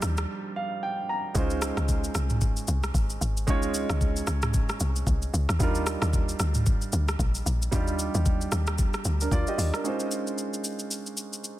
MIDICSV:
0, 0, Header, 1, 4, 480
1, 0, Start_track
1, 0, Key_signature, -5, "major"
1, 0, Tempo, 530973
1, 1223, Time_signature, 4, 2, 24, 8
1, 10482, End_track
2, 0, Start_track
2, 0, Title_t, "Grand piano"
2, 0, Program_c, 0, 0
2, 0, Control_c, 0, 64, 127
2, 0, Note_on_c, 0, 53, 61
2, 0, Note_on_c, 0, 55, 77
2, 0, Note_on_c, 0, 62, 71
2, 0, Note_on_c, 0, 63, 71
2, 0, Note_on_c, 0, 65, 72
2, 0, Note_on_c, 0, 72, 88
2, 509, Note_on_c, 0, 77, 72
2, 729, Note_off_c, 0, 77, 0
2, 749, Note_on_c, 0, 79, 79
2, 970, Note_off_c, 0, 79, 0
2, 989, Note_on_c, 0, 82, 73
2, 1186, Note_off_c, 0, 62, 0
2, 1190, Note_off_c, 0, 63, 0
2, 1194, Note_off_c, 0, 65, 0
2, 1198, Note_off_c, 0, 72, 0
2, 1209, Note_off_c, 0, 82, 0
2, 1211, Note_off_c, 0, 55, 0
2, 1215, Note_on_c, 0, 56, 78
2, 1222, Note_on_c, 0, 61, 69
2, 1230, Note_on_c, 0, 63, 70
2, 1236, Control_c, 0, 64, 0
2, 1237, Note_off_c, 0, 53, 0
2, 1237, Note_on_c, 0, 65, 70
2, 1245, Note_on_c, 0, 72, 84
2, 1411, Control_c, 0, 64, 127
2, 3103, Note_off_c, 0, 56, 0
2, 3107, Note_off_c, 0, 61, 0
2, 3110, Note_off_c, 0, 63, 0
2, 3114, Note_off_c, 0, 65, 0
2, 3118, Note_off_c, 0, 72, 0
2, 3135, Note_on_c, 0, 56, 77
2, 3143, Note_on_c, 0, 61, 73
2, 3151, Note_on_c, 0, 63, 71
2, 3159, Note_on_c, 0, 65, 71
2, 3166, Note_on_c, 0, 73, 88
2, 5023, Note_off_c, 0, 56, 0
2, 5027, Note_off_c, 0, 61, 0
2, 5031, Note_off_c, 0, 63, 0
2, 5035, Note_off_c, 0, 65, 0
2, 5039, Note_off_c, 0, 73, 0
2, 5054, Note_on_c, 0, 55, 74
2, 5062, Note_on_c, 0, 62, 70
2, 5069, Note_on_c, 0, 63, 70
2, 5075, Control_c, 0, 64, 0
2, 5077, Note_on_c, 0, 65, 73
2, 5085, Note_on_c, 0, 70, 87
2, 5210, Control_c, 0, 64, 127
2, 6943, Note_off_c, 0, 55, 0
2, 6946, Note_off_c, 0, 62, 0
2, 6950, Note_off_c, 0, 63, 0
2, 6954, Note_off_c, 0, 65, 0
2, 6958, Note_off_c, 0, 70, 0
2, 6973, Note_on_c, 0, 55, 77
2, 6981, Note_on_c, 0, 62, 70
2, 6988, Note_on_c, 0, 63, 72
2, 6996, Note_on_c, 0, 65, 70
2, 7004, Note_on_c, 0, 67, 85
2, 8158, Note_off_c, 0, 62, 0
2, 8162, Note_off_c, 0, 63, 0
2, 8166, Note_off_c, 0, 65, 0
2, 8170, Note_off_c, 0, 67, 0
2, 8330, Note_on_c, 0, 70, 68
2, 8335, Note_on_c, 0, 62, 55
2, 8422, Note_off_c, 0, 70, 0
2, 8425, Note_off_c, 0, 62, 0
2, 8431, Note_on_c, 0, 74, 77
2, 8437, Note_on_c, 0, 65, 62
2, 8560, Note_off_c, 0, 74, 0
2, 8563, Note_off_c, 0, 65, 0
2, 8571, Note_on_c, 0, 75, 75
2, 8577, Note_on_c, 0, 67, 61
2, 8795, Note_off_c, 0, 75, 0
2, 8798, Note_off_c, 0, 67, 0
2, 8808, Note_on_c, 0, 70, 68
2, 8813, Note_on_c, 0, 62, 57
2, 8862, Note_off_c, 0, 55, 0
2, 8894, Note_on_c, 0, 56, 66
2, 8902, Note_on_c, 0, 61, 66
2, 8909, Note_on_c, 0, 63, 63
2, 8915, Control_c, 0, 64, 0
2, 8917, Note_on_c, 0, 65, 65
2, 8925, Note_on_c, 0, 72, 75
2, 9033, Note_off_c, 0, 70, 0
2, 9036, Note_off_c, 0, 62, 0
2, 9050, Control_c, 0, 64, 127
2, 10482, Note_off_c, 0, 56, 0
2, 10482, Note_off_c, 0, 61, 0
2, 10482, Note_off_c, 0, 63, 0
2, 10482, Note_off_c, 0, 65, 0
2, 10482, Note_off_c, 0, 72, 0
2, 10482, End_track
3, 0, Start_track
3, 0, Title_t, "Log drum bass"
3, 0, Program_c, 1, 39
3, 25, Note_on_c, 1, 39, 100
3, 235, Note_off_c, 1, 39, 0
3, 1222, Note_on_c, 1, 37, 107
3, 1556, Note_off_c, 1, 37, 0
3, 1601, Note_on_c, 1, 37, 99
3, 1900, Note_off_c, 1, 37, 0
3, 1944, Note_on_c, 1, 36, 98
3, 2276, Note_off_c, 1, 36, 0
3, 2424, Note_on_c, 1, 36, 93
3, 2634, Note_off_c, 1, 36, 0
3, 2661, Note_on_c, 1, 32, 92
3, 2873, Note_off_c, 1, 32, 0
3, 2903, Note_on_c, 1, 32, 97
3, 3143, Note_on_c, 1, 37, 103
3, 3157, Note_off_c, 1, 32, 0
3, 3476, Note_off_c, 1, 37, 0
3, 3523, Note_on_c, 1, 37, 109
3, 3822, Note_off_c, 1, 37, 0
3, 3863, Note_on_c, 1, 37, 99
3, 4196, Note_off_c, 1, 37, 0
3, 4344, Note_on_c, 1, 36, 92
3, 4554, Note_off_c, 1, 36, 0
3, 4581, Note_on_c, 1, 36, 96
3, 4793, Note_off_c, 1, 36, 0
3, 4823, Note_on_c, 1, 37, 98
3, 4946, Note_off_c, 1, 37, 0
3, 4964, Note_on_c, 1, 39, 99
3, 5052, Note_off_c, 1, 39, 0
3, 5063, Note_on_c, 1, 39, 111
3, 5396, Note_off_c, 1, 39, 0
3, 5442, Note_on_c, 1, 39, 99
3, 5741, Note_off_c, 1, 39, 0
3, 5783, Note_on_c, 1, 38, 99
3, 6116, Note_off_c, 1, 38, 0
3, 6264, Note_on_c, 1, 38, 99
3, 6474, Note_off_c, 1, 38, 0
3, 6502, Note_on_c, 1, 34, 100
3, 6713, Note_off_c, 1, 34, 0
3, 6744, Note_on_c, 1, 34, 92
3, 6955, Note_off_c, 1, 34, 0
3, 6985, Note_on_c, 1, 39, 110
3, 7317, Note_off_c, 1, 39, 0
3, 7364, Note_on_c, 1, 39, 101
3, 7662, Note_off_c, 1, 39, 0
3, 7704, Note_on_c, 1, 39, 100
3, 8036, Note_off_c, 1, 39, 0
3, 8182, Note_on_c, 1, 38, 94
3, 8393, Note_off_c, 1, 38, 0
3, 8421, Note_on_c, 1, 38, 100
3, 8544, Note_off_c, 1, 38, 0
3, 8662, Note_on_c, 1, 39, 108
3, 8785, Note_off_c, 1, 39, 0
3, 10482, End_track
4, 0, Start_track
4, 0, Title_t, "Drums"
4, 21, Note_on_c, 9, 37, 96
4, 21, Note_on_c, 9, 82, 100
4, 111, Note_off_c, 9, 37, 0
4, 111, Note_off_c, 9, 82, 0
4, 157, Note_on_c, 9, 82, 50
4, 164, Note_on_c, 9, 37, 100
4, 247, Note_off_c, 9, 82, 0
4, 254, Note_off_c, 9, 37, 0
4, 1223, Note_on_c, 9, 36, 122
4, 1223, Note_on_c, 9, 82, 79
4, 1313, Note_off_c, 9, 36, 0
4, 1313, Note_off_c, 9, 82, 0
4, 1358, Note_on_c, 9, 82, 54
4, 1448, Note_off_c, 9, 82, 0
4, 1464, Note_on_c, 9, 37, 101
4, 1464, Note_on_c, 9, 82, 97
4, 1554, Note_off_c, 9, 37, 0
4, 1554, Note_off_c, 9, 82, 0
4, 1601, Note_on_c, 9, 37, 96
4, 1605, Note_on_c, 9, 82, 57
4, 1692, Note_off_c, 9, 37, 0
4, 1695, Note_off_c, 9, 82, 0
4, 1704, Note_on_c, 9, 36, 95
4, 1705, Note_on_c, 9, 82, 77
4, 1795, Note_off_c, 9, 36, 0
4, 1795, Note_off_c, 9, 82, 0
4, 1845, Note_on_c, 9, 82, 58
4, 1935, Note_off_c, 9, 82, 0
4, 1942, Note_on_c, 9, 37, 96
4, 1942, Note_on_c, 9, 82, 99
4, 2032, Note_off_c, 9, 37, 0
4, 2032, Note_off_c, 9, 82, 0
4, 2077, Note_on_c, 9, 82, 51
4, 2083, Note_on_c, 9, 45, 71
4, 2167, Note_off_c, 9, 82, 0
4, 2174, Note_off_c, 9, 45, 0
4, 2180, Note_on_c, 9, 82, 83
4, 2183, Note_on_c, 9, 36, 112
4, 2271, Note_off_c, 9, 82, 0
4, 2274, Note_off_c, 9, 36, 0
4, 2320, Note_on_c, 9, 82, 53
4, 2410, Note_off_c, 9, 82, 0
4, 2419, Note_on_c, 9, 82, 97
4, 2510, Note_off_c, 9, 82, 0
4, 2563, Note_on_c, 9, 82, 58
4, 2564, Note_on_c, 9, 37, 98
4, 2654, Note_off_c, 9, 82, 0
4, 2655, Note_off_c, 9, 37, 0
4, 2661, Note_on_c, 9, 36, 98
4, 2665, Note_on_c, 9, 82, 68
4, 2751, Note_off_c, 9, 36, 0
4, 2755, Note_off_c, 9, 82, 0
4, 2801, Note_on_c, 9, 82, 53
4, 2891, Note_off_c, 9, 82, 0
4, 2909, Note_on_c, 9, 82, 80
4, 2999, Note_off_c, 9, 82, 0
4, 3048, Note_on_c, 9, 82, 58
4, 3138, Note_off_c, 9, 82, 0
4, 3143, Note_on_c, 9, 36, 118
4, 3143, Note_on_c, 9, 82, 82
4, 3233, Note_off_c, 9, 36, 0
4, 3233, Note_off_c, 9, 82, 0
4, 3277, Note_on_c, 9, 82, 53
4, 3368, Note_off_c, 9, 82, 0
4, 3383, Note_on_c, 9, 82, 94
4, 3474, Note_off_c, 9, 82, 0
4, 3522, Note_on_c, 9, 37, 96
4, 3525, Note_on_c, 9, 82, 55
4, 3612, Note_off_c, 9, 37, 0
4, 3615, Note_off_c, 9, 82, 0
4, 3625, Note_on_c, 9, 36, 95
4, 3626, Note_on_c, 9, 82, 73
4, 3715, Note_off_c, 9, 36, 0
4, 3716, Note_off_c, 9, 82, 0
4, 3765, Note_on_c, 9, 82, 57
4, 3855, Note_off_c, 9, 82, 0
4, 3861, Note_on_c, 9, 82, 99
4, 3862, Note_on_c, 9, 37, 95
4, 3952, Note_off_c, 9, 37, 0
4, 3952, Note_off_c, 9, 82, 0
4, 3997, Note_on_c, 9, 82, 52
4, 4004, Note_on_c, 9, 37, 98
4, 4004, Note_on_c, 9, 45, 72
4, 4087, Note_off_c, 9, 82, 0
4, 4094, Note_off_c, 9, 37, 0
4, 4094, Note_off_c, 9, 45, 0
4, 4102, Note_on_c, 9, 82, 87
4, 4104, Note_on_c, 9, 36, 110
4, 4192, Note_off_c, 9, 82, 0
4, 4195, Note_off_c, 9, 36, 0
4, 4241, Note_on_c, 9, 82, 51
4, 4244, Note_on_c, 9, 37, 101
4, 4332, Note_off_c, 9, 82, 0
4, 4334, Note_off_c, 9, 37, 0
4, 4340, Note_on_c, 9, 82, 97
4, 4430, Note_off_c, 9, 82, 0
4, 4483, Note_on_c, 9, 82, 58
4, 4574, Note_off_c, 9, 82, 0
4, 4581, Note_on_c, 9, 36, 99
4, 4584, Note_on_c, 9, 82, 73
4, 4671, Note_off_c, 9, 36, 0
4, 4674, Note_off_c, 9, 82, 0
4, 4721, Note_on_c, 9, 82, 49
4, 4811, Note_off_c, 9, 82, 0
4, 4827, Note_on_c, 9, 82, 78
4, 4918, Note_off_c, 9, 82, 0
4, 4962, Note_on_c, 9, 37, 98
4, 4968, Note_on_c, 9, 82, 62
4, 5053, Note_off_c, 9, 37, 0
4, 5058, Note_off_c, 9, 82, 0
4, 5063, Note_on_c, 9, 36, 126
4, 5063, Note_on_c, 9, 82, 79
4, 5153, Note_off_c, 9, 82, 0
4, 5154, Note_off_c, 9, 36, 0
4, 5198, Note_on_c, 9, 82, 54
4, 5288, Note_off_c, 9, 82, 0
4, 5302, Note_on_c, 9, 37, 101
4, 5303, Note_on_c, 9, 82, 97
4, 5393, Note_off_c, 9, 37, 0
4, 5393, Note_off_c, 9, 82, 0
4, 5440, Note_on_c, 9, 37, 98
4, 5443, Note_on_c, 9, 82, 53
4, 5531, Note_off_c, 9, 37, 0
4, 5534, Note_off_c, 9, 82, 0
4, 5545, Note_on_c, 9, 36, 98
4, 5545, Note_on_c, 9, 82, 76
4, 5635, Note_off_c, 9, 36, 0
4, 5635, Note_off_c, 9, 82, 0
4, 5685, Note_on_c, 9, 82, 56
4, 5775, Note_off_c, 9, 82, 0
4, 5782, Note_on_c, 9, 37, 94
4, 5782, Note_on_c, 9, 82, 98
4, 5872, Note_off_c, 9, 37, 0
4, 5872, Note_off_c, 9, 82, 0
4, 5917, Note_on_c, 9, 82, 50
4, 5924, Note_on_c, 9, 45, 73
4, 6007, Note_off_c, 9, 82, 0
4, 6014, Note_off_c, 9, 45, 0
4, 6022, Note_on_c, 9, 82, 90
4, 6025, Note_on_c, 9, 36, 110
4, 6112, Note_off_c, 9, 82, 0
4, 6115, Note_off_c, 9, 36, 0
4, 6162, Note_on_c, 9, 82, 51
4, 6252, Note_off_c, 9, 82, 0
4, 6261, Note_on_c, 9, 82, 99
4, 6351, Note_off_c, 9, 82, 0
4, 6405, Note_on_c, 9, 82, 59
4, 6406, Note_on_c, 9, 37, 101
4, 6495, Note_off_c, 9, 82, 0
4, 6496, Note_off_c, 9, 37, 0
4, 6502, Note_on_c, 9, 36, 97
4, 6507, Note_on_c, 9, 82, 73
4, 6592, Note_off_c, 9, 36, 0
4, 6597, Note_off_c, 9, 82, 0
4, 6642, Note_on_c, 9, 82, 51
4, 6733, Note_off_c, 9, 82, 0
4, 6749, Note_on_c, 9, 82, 79
4, 6840, Note_off_c, 9, 82, 0
4, 6890, Note_on_c, 9, 82, 60
4, 6981, Note_off_c, 9, 82, 0
4, 6984, Note_on_c, 9, 36, 118
4, 6984, Note_on_c, 9, 82, 81
4, 7074, Note_off_c, 9, 82, 0
4, 7075, Note_off_c, 9, 36, 0
4, 7118, Note_on_c, 9, 82, 55
4, 7208, Note_off_c, 9, 82, 0
4, 7223, Note_on_c, 9, 82, 91
4, 7313, Note_off_c, 9, 82, 0
4, 7364, Note_on_c, 9, 82, 54
4, 7454, Note_off_c, 9, 82, 0
4, 7464, Note_on_c, 9, 82, 75
4, 7465, Note_on_c, 9, 36, 95
4, 7555, Note_off_c, 9, 36, 0
4, 7555, Note_off_c, 9, 82, 0
4, 7604, Note_on_c, 9, 82, 55
4, 7695, Note_off_c, 9, 82, 0
4, 7701, Note_on_c, 9, 37, 91
4, 7701, Note_on_c, 9, 82, 102
4, 7792, Note_off_c, 9, 37, 0
4, 7792, Note_off_c, 9, 82, 0
4, 7837, Note_on_c, 9, 82, 50
4, 7843, Note_on_c, 9, 37, 102
4, 7927, Note_off_c, 9, 82, 0
4, 7934, Note_off_c, 9, 37, 0
4, 7940, Note_on_c, 9, 82, 85
4, 7944, Note_on_c, 9, 36, 107
4, 8030, Note_off_c, 9, 82, 0
4, 8034, Note_off_c, 9, 36, 0
4, 8080, Note_on_c, 9, 82, 49
4, 8083, Note_on_c, 9, 37, 104
4, 8170, Note_off_c, 9, 82, 0
4, 8173, Note_off_c, 9, 37, 0
4, 8179, Note_on_c, 9, 82, 96
4, 8269, Note_off_c, 9, 82, 0
4, 8324, Note_on_c, 9, 82, 58
4, 8414, Note_off_c, 9, 82, 0
4, 8421, Note_on_c, 9, 36, 100
4, 8425, Note_on_c, 9, 82, 72
4, 8511, Note_off_c, 9, 36, 0
4, 8515, Note_off_c, 9, 82, 0
4, 8561, Note_on_c, 9, 82, 51
4, 8651, Note_off_c, 9, 82, 0
4, 8668, Note_on_c, 9, 46, 60
4, 8668, Note_on_c, 9, 82, 74
4, 8759, Note_off_c, 9, 46, 0
4, 8759, Note_off_c, 9, 82, 0
4, 8802, Note_on_c, 9, 37, 94
4, 8808, Note_on_c, 9, 82, 58
4, 8893, Note_off_c, 9, 37, 0
4, 8898, Note_off_c, 9, 82, 0
4, 8903, Note_on_c, 9, 82, 75
4, 8993, Note_off_c, 9, 82, 0
4, 9038, Note_on_c, 9, 82, 49
4, 9128, Note_off_c, 9, 82, 0
4, 9143, Note_on_c, 9, 82, 89
4, 9233, Note_off_c, 9, 82, 0
4, 9285, Note_on_c, 9, 82, 51
4, 9375, Note_off_c, 9, 82, 0
4, 9385, Note_on_c, 9, 82, 69
4, 9476, Note_off_c, 9, 82, 0
4, 9525, Note_on_c, 9, 82, 52
4, 9616, Note_off_c, 9, 82, 0
4, 9621, Note_on_c, 9, 82, 94
4, 9711, Note_off_c, 9, 82, 0
4, 9755, Note_on_c, 9, 82, 46
4, 9846, Note_off_c, 9, 82, 0
4, 9862, Note_on_c, 9, 82, 78
4, 9952, Note_off_c, 9, 82, 0
4, 10001, Note_on_c, 9, 82, 47
4, 10091, Note_off_c, 9, 82, 0
4, 10099, Note_on_c, 9, 82, 91
4, 10190, Note_off_c, 9, 82, 0
4, 10243, Note_on_c, 9, 82, 55
4, 10333, Note_off_c, 9, 82, 0
4, 10342, Note_on_c, 9, 82, 67
4, 10433, Note_off_c, 9, 82, 0
4, 10482, End_track
0, 0, End_of_file